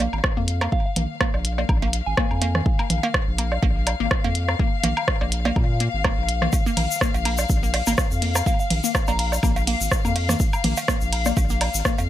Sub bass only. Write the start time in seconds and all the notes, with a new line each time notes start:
0.13 G#1
0.37 F2
0.96 A#1
1.34 A#1
1.69 A#1
2.07 G#1
2.31 F2
2.90 A#1
3.28 A#1
3.63 A#1
4.00 G#1
4.24 F2
4.84 A#1
5.21 A#1
5.56 A#2
5.94 G#1
6.18 A#1
6.77 A#1
7.14 A#1
7.50 A#1
7.87 G#1
8.11 F2
8.70 A#1
9.08 A#1
9.43 A#1
9.81 G#1
10.05 F2
10.64 A#1
11.02 A#1
11.37 A#1
11.74 G#1
11.98 F2